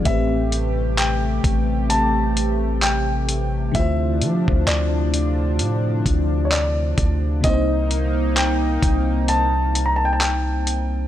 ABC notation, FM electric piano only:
X:1
M:4/4
L:1/8
Q:"Swing 16ths" 1/4=65
K:Am
V:1 name="FM electric piano"
[A,,A,CGB]8 | [D,A,EFc]8 | [C,_B,C_Ec]8 |]